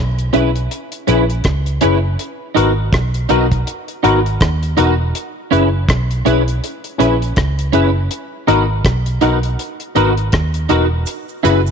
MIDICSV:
0, 0, Header, 1, 6, 480
1, 0, Start_track
1, 0, Key_signature, 5, "minor"
1, 0, Tempo, 740741
1, 1417, Time_signature, 4, 2, 24, 8
1, 7589, End_track
2, 0, Start_track
2, 0, Title_t, "Clean electric guitar"
2, 0, Program_c, 0, 27
2, 213, Note_on_c, 0, 61, 70
2, 219, Note_on_c, 0, 64, 77
2, 223, Note_on_c, 0, 71, 80
2, 319, Note_off_c, 0, 61, 0
2, 322, Note_off_c, 0, 64, 0
2, 324, Note_off_c, 0, 71, 0
2, 696, Note_on_c, 0, 61, 76
2, 702, Note_on_c, 0, 64, 84
2, 705, Note_on_c, 0, 71, 83
2, 800, Note_off_c, 0, 61, 0
2, 804, Note_off_c, 0, 64, 0
2, 805, Note_off_c, 0, 71, 0
2, 1175, Note_on_c, 0, 61, 81
2, 1180, Note_on_c, 0, 64, 86
2, 1182, Note_on_c, 0, 71, 94
2, 1280, Note_off_c, 0, 61, 0
2, 1282, Note_off_c, 0, 64, 0
2, 1283, Note_off_c, 0, 71, 0
2, 1650, Note_on_c, 0, 63, 77
2, 1656, Note_on_c, 0, 66, 86
2, 1660, Note_on_c, 0, 71, 86
2, 1757, Note_off_c, 0, 63, 0
2, 1760, Note_off_c, 0, 66, 0
2, 1762, Note_off_c, 0, 71, 0
2, 2132, Note_on_c, 0, 63, 73
2, 2137, Note_on_c, 0, 66, 80
2, 2141, Note_on_c, 0, 71, 86
2, 2238, Note_off_c, 0, 63, 0
2, 2241, Note_off_c, 0, 66, 0
2, 2243, Note_off_c, 0, 71, 0
2, 2611, Note_on_c, 0, 63, 68
2, 2616, Note_on_c, 0, 66, 79
2, 2620, Note_on_c, 0, 71, 83
2, 2718, Note_off_c, 0, 63, 0
2, 2720, Note_off_c, 0, 66, 0
2, 2722, Note_off_c, 0, 71, 0
2, 3090, Note_on_c, 0, 63, 67
2, 3096, Note_on_c, 0, 66, 78
2, 3100, Note_on_c, 0, 71, 79
2, 3197, Note_off_c, 0, 63, 0
2, 3200, Note_off_c, 0, 66, 0
2, 3202, Note_off_c, 0, 71, 0
2, 3570, Note_on_c, 0, 61, 87
2, 3573, Note_on_c, 0, 64, 79
2, 3577, Note_on_c, 0, 71, 92
2, 3677, Note_off_c, 0, 61, 0
2, 3678, Note_off_c, 0, 64, 0
2, 3680, Note_off_c, 0, 71, 0
2, 4051, Note_on_c, 0, 61, 77
2, 4057, Note_on_c, 0, 64, 84
2, 4062, Note_on_c, 0, 71, 84
2, 4157, Note_off_c, 0, 61, 0
2, 4160, Note_off_c, 0, 64, 0
2, 4162, Note_off_c, 0, 71, 0
2, 4531, Note_on_c, 0, 61, 84
2, 4534, Note_on_c, 0, 64, 89
2, 4539, Note_on_c, 0, 71, 90
2, 4637, Note_off_c, 0, 61, 0
2, 4639, Note_off_c, 0, 64, 0
2, 4641, Note_off_c, 0, 71, 0
2, 5006, Note_on_c, 0, 61, 84
2, 5012, Note_on_c, 0, 64, 85
2, 5016, Note_on_c, 0, 71, 93
2, 5114, Note_off_c, 0, 61, 0
2, 5118, Note_off_c, 0, 64, 0
2, 5119, Note_off_c, 0, 71, 0
2, 5491, Note_on_c, 0, 63, 81
2, 5496, Note_on_c, 0, 66, 88
2, 5501, Note_on_c, 0, 71, 96
2, 5597, Note_off_c, 0, 63, 0
2, 5599, Note_off_c, 0, 66, 0
2, 5602, Note_off_c, 0, 71, 0
2, 5969, Note_on_c, 0, 63, 82
2, 5974, Note_on_c, 0, 66, 80
2, 5977, Note_on_c, 0, 71, 85
2, 6076, Note_off_c, 0, 63, 0
2, 6078, Note_off_c, 0, 66, 0
2, 6080, Note_off_c, 0, 71, 0
2, 6451, Note_on_c, 0, 63, 84
2, 6455, Note_on_c, 0, 66, 90
2, 6459, Note_on_c, 0, 71, 85
2, 6556, Note_off_c, 0, 63, 0
2, 6559, Note_off_c, 0, 66, 0
2, 6560, Note_off_c, 0, 71, 0
2, 6928, Note_on_c, 0, 63, 72
2, 6932, Note_on_c, 0, 66, 82
2, 6938, Note_on_c, 0, 71, 89
2, 7035, Note_off_c, 0, 63, 0
2, 7037, Note_off_c, 0, 66, 0
2, 7040, Note_off_c, 0, 71, 0
2, 7408, Note_on_c, 0, 64, 85
2, 7413, Note_on_c, 0, 66, 91
2, 7419, Note_on_c, 0, 71, 96
2, 7515, Note_off_c, 0, 64, 0
2, 7517, Note_off_c, 0, 66, 0
2, 7520, Note_off_c, 0, 71, 0
2, 7589, End_track
3, 0, Start_track
3, 0, Title_t, "Tine electric piano"
3, 0, Program_c, 1, 4
3, 213, Note_on_c, 1, 61, 84
3, 216, Note_on_c, 1, 64, 76
3, 216, Note_on_c, 1, 68, 71
3, 216, Note_on_c, 1, 71, 86
3, 314, Note_off_c, 1, 61, 0
3, 315, Note_off_c, 1, 64, 0
3, 315, Note_off_c, 1, 68, 0
3, 315, Note_off_c, 1, 71, 0
3, 696, Note_on_c, 1, 61, 80
3, 699, Note_on_c, 1, 64, 75
3, 699, Note_on_c, 1, 68, 76
3, 701, Note_on_c, 1, 71, 91
3, 795, Note_off_c, 1, 61, 0
3, 797, Note_off_c, 1, 64, 0
3, 797, Note_off_c, 1, 68, 0
3, 798, Note_off_c, 1, 71, 0
3, 1175, Note_on_c, 1, 61, 80
3, 1176, Note_on_c, 1, 64, 77
3, 1179, Note_on_c, 1, 68, 70
3, 1181, Note_on_c, 1, 71, 87
3, 1274, Note_off_c, 1, 61, 0
3, 1275, Note_off_c, 1, 64, 0
3, 1276, Note_off_c, 1, 68, 0
3, 1278, Note_off_c, 1, 71, 0
3, 1654, Note_on_c, 1, 63, 77
3, 1655, Note_on_c, 1, 59, 84
3, 1659, Note_on_c, 1, 66, 79
3, 1659, Note_on_c, 1, 70, 94
3, 1754, Note_off_c, 1, 59, 0
3, 1754, Note_off_c, 1, 63, 0
3, 1756, Note_off_c, 1, 70, 0
3, 1757, Note_off_c, 1, 66, 0
3, 2136, Note_on_c, 1, 59, 79
3, 2137, Note_on_c, 1, 63, 72
3, 2138, Note_on_c, 1, 66, 75
3, 2140, Note_on_c, 1, 70, 90
3, 2235, Note_off_c, 1, 59, 0
3, 2236, Note_off_c, 1, 63, 0
3, 2236, Note_off_c, 1, 66, 0
3, 2237, Note_off_c, 1, 70, 0
3, 2615, Note_on_c, 1, 59, 84
3, 2615, Note_on_c, 1, 63, 78
3, 2616, Note_on_c, 1, 66, 79
3, 2618, Note_on_c, 1, 70, 97
3, 2714, Note_off_c, 1, 59, 0
3, 2714, Note_off_c, 1, 63, 0
3, 2715, Note_off_c, 1, 66, 0
3, 2716, Note_off_c, 1, 70, 0
3, 3091, Note_on_c, 1, 59, 79
3, 3092, Note_on_c, 1, 63, 75
3, 3094, Note_on_c, 1, 66, 75
3, 3095, Note_on_c, 1, 70, 84
3, 3192, Note_off_c, 1, 59, 0
3, 3193, Note_off_c, 1, 63, 0
3, 3194, Note_off_c, 1, 66, 0
3, 3194, Note_off_c, 1, 70, 0
3, 3575, Note_on_c, 1, 61, 79
3, 3575, Note_on_c, 1, 64, 79
3, 3575, Note_on_c, 1, 68, 81
3, 3577, Note_on_c, 1, 71, 91
3, 3674, Note_off_c, 1, 61, 0
3, 3674, Note_off_c, 1, 64, 0
3, 3674, Note_off_c, 1, 68, 0
3, 3675, Note_off_c, 1, 71, 0
3, 4053, Note_on_c, 1, 61, 85
3, 4054, Note_on_c, 1, 64, 75
3, 4056, Note_on_c, 1, 68, 81
3, 4059, Note_on_c, 1, 71, 93
3, 4153, Note_off_c, 1, 61, 0
3, 4153, Note_off_c, 1, 64, 0
3, 4155, Note_off_c, 1, 68, 0
3, 4156, Note_off_c, 1, 71, 0
3, 4526, Note_on_c, 1, 61, 83
3, 4529, Note_on_c, 1, 64, 77
3, 4530, Note_on_c, 1, 71, 90
3, 4531, Note_on_c, 1, 68, 76
3, 4629, Note_off_c, 1, 61, 0
3, 4631, Note_off_c, 1, 64, 0
3, 4631, Note_off_c, 1, 71, 0
3, 4632, Note_off_c, 1, 68, 0
3, 5011, Note_on_c, 1, 64, 74
3, 5013, Note_on_c, 1, 61, 84
3, 5013, Note_on_c, 1, 68, 75
3, 5016, Note_on_c, 1, 71, 86
3, 5111, Note_off_c, 1, 64, 0
3, 5112, Note_off_c, 1, 61, 0
3, 5113, Note_off_c, 1, 68, 0
3, 5114, Note_off_c, 1, 71, 0
3, 5491, Note_on_c, 1, 59, 85
3, 5492, Note_on_c, 1, 63, 81
3, 5493, Note_on_c, 1, 66, 75
3, 5494, Note_on_c, 1, 70, 95
3, 5592, Note_off_c, 1, 59, 0
3, 5592, Note_off_c, 1, 63, 0
3, 5593, Note_off_c, 1, 66, 0
3, 5593, Note_off_c, 1, 70, 0
3, 5971, Note_on_c, 1, 63, 75
3, 5972, Note_on_c, 1, 66, 73
3, 5973, Note_on_c, 1, 59, 80
3, 5976, Note_on_c, 1, 70, 89
3, 6071, Note_off_c, 1, 63, 0
3, 6072, Note_off_c, 1, 59, 0
3, 6072, Note_off_c, 1, 66, 0
3, 6074, Note_off_c, 1, 70, 0
3, 6448, Note_on_c, 1, 59, 82
3, 6453, Note_on_c, 1, 63, 76
3, 6454, Note_on_c, 1, 66, 74
3, 6457, Note_on_c, 1, 70, 90
3, 6550, Note_off_c, 1, 59, 0
3, 6552, Note_off_c, 1, 63, 0
3, 6553, Note_off_c, 1, 66, 0
3, 6554, Note_off_c, 1, 70, 0
3, 6929, Note_on_c, 1, 59, 77
3, 6930, Note_on_c, 1, 63, 77
3, 6932, Note_on_c, 1, 66, 73
3, 6932, Note_on_c, 1, 70, 89
3, 7030, Note_off_c, 1, 59, 0
3, 7031, Note_off_c, 1, 63, 0
3, 7032, Note_off_c, 1, 66, 0
3, 7032, Note_off_c, 1, 70, 0
3, 7411, Note_on_c, 1, 61, 80
3, 7413, Note_on_c, 1, 64, 77
3, 7414, Note_on_c, 1, 68, 75
3, 7416, Note_on_c, 1, 71, 92
3, 7511, Note_off_c, 1, 61, 0
3, 7512, Note_off_c, 1, 64, 0
3, 7512, Note_off_c, 1, 68, 0
3, 7513, Note_off_c, 1, 71, 0
3, 7589, End_track
4, 0, Start_track
4, 0, Title_t, "Fingered electric bass"
4, 0, Program_c, 2, 33
4, 0, Note_on_c, 2, 35, 93
4, 192, Note_off_c, 2, 35, 0
4, 223, Note_on_c, 2, 35, 78
4, 434, Note_off_c, 2, 35, 0
4, 704, Note_on_c, 2, 34, 80
4, 914, Note_off_c, 2, 34, 0
4, 943, Note_on_c, 2, 37, 87
4, 1154, Note_off_c, 2, 37, 0
4, 1189, Note_on_c, 2, 30, 83
4, 1397, Note_off_c, 2, 30, 0
4, 1663, Note_on_c, 2, 32, 88
4, 1874, Note_off_c, 2, 32, 0
4, 1900, Note_on_c, 2, 35, 83
4, 2112, Note_off_c, 2, 35, 0
4, 2142, Note_on_c, 2, 35, 88
4, 2353, Note_off_c, 2, 35, 0
4, 2621, Note_on_c, 2, 32, 77
4, 2832, Note_off_c, 2, 32, 0
4, 2861, Note_on_c, 2, 39, 87
4, 3072, Note_off_c, 2, 39, 0
4, 3102, Note_on_c, 2, 28, 86
4, 3313, Note_off_c, 2, 28, 0
4, 3581, Note_on_c, 2, 30, 87
4, 3792, Note_off_c, 2, 30, 0
4, 3817, Note_on_c, 2, 35, 88
4, 4030, Note_off_c, 2, 35, 0
4, 4059, Note_on_c, 2, 35, 84
4, 4271, Note_off_c, 2, 35, 0
4, 4535, Note_on_c, 2, 34, 86
4, 4749, Note_off_c, 2, 34, 0
4, 4779, Note_on_c, 2, 37, 83
4, 4990, Note_off_c, 2, 37, 0
4, 5019, Note_on_c, 2, 30, 87
4, 5230, Note_off_c, 2, 30, 0
4, 5498, Note_on_c, 2, 32, 88
4, 5710, Note_off_c, 2, 32, 0
4, 5736, Note_on_c, 2, 35, 88
4, 5949, Note_off_c, 2, 35, 0
4, 5978, Note_on_c, 2, 35, 87
4, 6190, Note_off_c, 2, 35, 0
4, 6458, Note_on_c, 2, 32, 76
4, 6670, Note_off_c, 2, 32, 0
4, 6697, Note_on_c, 2, 39, 84
4, 6909, Note_off_c, 2, 39, 0
4, 6940, Note_on_c, 2, 28, 80
4, 7151, Note_off_c, 2, 28, 0
4, 7418, Note_on_c, 2, 30, 87
4, 7589, Note_off_c, 2, 30, 0
4, 7589, End_track
5, 0, Start_track
5, 0, Title_t, "Muted clean electric guitar strokes"
5, 835, Note_on_c, 9, 29, 45
5, 900, Note_off_c, 9, 29, 0
5, 2756, Note_on_c, 9, 29, 37
5, 2821, Note_off_c, 9, 29, 0
5, 4671, Note_on_c, 9, 29, 49
5, 4736, Note_off_c, 9, 29, 0
5, 6593, Note_on_c, 9, 29, 40
5, 6658, Note_off_c, 9, 29, 0
5, 7589, End_track
6, 0, Start_track
6, 0, Title_t, "Drums"
6, 120, Note_on_c, 9, 42, 50
6, 185, Note_off_c, 9, 42, 0
6, 217, Note_on_c, 9, 42, 76
6, 282, Note_off_c, 9, 42, 0
6, 360, Note_on_c, 9, 42, 48
6, 425, Note_off_c, 9, 42, 0
6, 461, Note_on_c, 9, 42, 74
6, 526, Note_off_c, 9, 42, 0
6, 595, Note_on_c, 9, 42, 51
6, 660, Note_off_c, 9, 42, 0
6, 698, Note_on_c, 9, 42, 61
6, 763, Note_off_c, 9, 42, 0
6, 840, Note_on_c, 9, 42, 44
6, 905, Note_off_c, 9, 42, 0
6, 933, Note_on_c, 9, 42, 67
6, 939, Note_on_c, 9, 36, 98
6, 942, Note_on_c, 9, 37, 96
6, 998, Note_off_c, 9, 42, 0
6, 1003, Note_off_c, 9, 36, 0
6, 1007, Note_off_c, 9, 37, 0
6, 1077, Note_on_c, 9, 42, 57
6, 1142, Note_off_c, 9, 42, 0
6, 1172, Note_on_c, 9, 42, 76
6, 1237, Note_off_c, 9, 42, 0
6, 1421, Note_on_c, 9, 42, 76
6, 1486, Note_off_c, 9, 42, 0
6, 1665, Note_on_c, 9, 42, 68
6, 1730, Note_off_c, 9, 42, 0
6, 1896, Note_on_c, 9, 36, 104
6, 1898, Note_on_c, 9, 42, 71
6, 1906, Note_on_c, 9, 37, 104
6, 1961, Note_off_c, 9, 36, 0
6, 1963, Note_off_c, 9, 42, 0
6, 1970, Note_off_c, 9, 37, 0
6, 2036, Note_on_c, 9, 42, 51
6, 2101, Note_off_c, 9, 42, 0
6, 2133, Note_on_c, 9, 42, 73
6, 2198, Note_off_c, 9, 42, 0
6, 2278, Note_on_c, 9, 36, 52
6, 2278, Note_on_c, 9, 42, 44
6, 2343, Note_off_c, 9, 36, 0
6, 2343, Note_off_c, 9, 42, 0
6, 2379, Note_on_c, 9, 42, 71
6, 2444, Note_off_c, 9, 42, 0
6, 2516, Note_on_c, 9, 42, 49
6, 2580, Note_off_c, 9, 42, 0
6, 2619, Note_on_c, 9, 42, 65
6, 2683, Note_off_c, 9, 42, 0
6, 2761, Note_on_c, 9, 42, 44
6, 2826, Note_off_c, 9, 42, 0
6, 2854, Note_on_c, 9, 42, 68
6, 2857, Note_on_c, 9, 36, 98
6, 2864, Note_on_c, 9, 37, 103
6, 2919, Note_off_c, 9, 42, 0
6, 2922, Note_off_c, 9, 36, 0
6, 2929, Note_off_c, 9, 37, 0
6, 2998, Note_on_c, 9, 42, 54
6, 3062, Note_off_c, 9, 42, 0
6, 3094, Note_on_c, 9, 42, 76
6, 3159, Note_off_c, 9, 42, 0
6, 3337, Note_on_c, 9, 42, 77
6, 3402, Note_off_c, 9, 42, 0
6, 3581, Note_on_c, 9, 42, 68
6, 3646, Note_off_c, 9, 42, 0
6, 3814, Note_on_c, 9, 36, 108
6, 3815, Note_on_c, 9, 42, 81
6, 3823, Note_on_c, 9, 37, 107
6, 3879, Note_off_c, 9, 36, 0
6, 3880, Note_off_c, 9, 42, 0
6, 3887, Note_off_c, 9, 37, 0
6, 3957, Note_on_c, 9, 42, 50
6, 4022, Note_off_c, 9, 42, 0
6, 4056, Note_on_c, 9, 42, 75
6, 4121, Note_off_c, 9, 42, 0
6, 4198, Note_on_c, 9, 42, 45
6, 4263, Note_off_c, 9, 42, 0
6, 4301, Note_on_c, 9, 42, 78
6, 4366, Note_off_c, 9, 42, 0
6, 4434, Note_on_c, 9, 42, 49
6, 4498, Note_off_c, 9, 42, 0
6, 4538, Note_on_c, 9, 42, 61
6, 4603, Note_off_c, 9, 42, 0
6, 4680, Note_on_c, 9, 42, 44
6, 4744, Note_off_c, 9, 42, 0
6, 4772, Note_on_c, 9, 42, 67
6, 4776, Note_on_c, 9, 36, 101
6, 4781, Note_on_c, 9, 37, 99
6, 4836, Note_off_c, 9, 42, 0
6, 4841, Note_off_c, 9, 36, 0
6, 4846, Note_off_c, 9, 37, 0
6, 4916, Note_on_c, 9, 42, 59
6, 4981, Note_off_c, 9, 42, 0
6, 5010, Note_on_c, 9, 42, 75
6, 5075, Note_off_c, 9, 42, 0
6, 5254, Note_on_c, 9, 42, 80
6, 5319, Note_off_c, 9, 42, 0
6, 5497, Note_on_c, 9, 42, 66
6, 5562, Note_off_c, 9, 42, 0
6, 5732, Note_on_c, 9, 36, 113
6, 5732, Note_on_c, 9, 42, 77
6, 5740, Note_on_c, 9, 37, 105
6, 5797, Note_off_c, 9, 36, 0
6, 5797, Note_off_c, 9, 42, 0
6, 5804, Note_off_c, 9, 37, 0
6, 5871, Note_on_c, 9, 42, 51
6, 5936, Note_off_c, 9, 42, 0
6, 5969, Note_on_c, 9, 42, 72
6, 6034, Note_off_c, 9, 42, 0
6, 6112, Note_on_c, 9, 42, 48
6, 6177, Note_off_c, 9, 42, 0
6, 6216, Note_on_c, 9, 42, 72
6, 6281, Note_off_c, 9, 42, 0
6, 6350, Note_on_c, 9, 42, 51
6, 6414, Note_off_c, 9, 42, 0
6, 6452, Note_on_c, 9, 42, 64
6, 6516, Note_off_c, 9, 42, 0
6, 6593, Note_on_c, 9, 42, 43
6, 6658, Note_off_c, 9, 42, 0
6, 6689, Note_on_c, 9, 42, 68
6, 6694, Note_on_c, 9, 36, 108
6, 6698, Note_on_c, 9, 37, 109
6, 6754, Note_off_c, 9, 42, 0
6, 6759, Note_off_c, 9, 36, 0
6, 6763, Note_off_c, 9, 37, 0
6, 6830, Note_on_c, 9, 42, 57
6, 6895, Note_off_c, 9, 42, 0
6, 6928, Note_on_c, 9, 42, 73
6, 6993, Note_off_c, 9, 42, 0
6, 7168, Note_on_c, 9, 69, 70
6, 7174, Note_on_c, 9, 42, 74
6, 7233, Note_off_c, 9, 69, 0
6, 7239, Note_off_c, 9, 42, 0
6, 7314, Note_on_c, 9, 69, 42
6, 7379, Note_off_c, 9, 69, 0
6, 7418, Note_on_c, 9, 69, 48
6, 7419, Note_on_c, 9, 42, 68
6, 7483, Note_off_c, 9, 42, 0
6, 7483, Note_off_c, 9, 69, 0
6, 7560, Note_on_c, 9, 69, 58
6, 7589, Note_off_c, 9, 69, 0
6, 7589, End_track
0, 0, End_of_file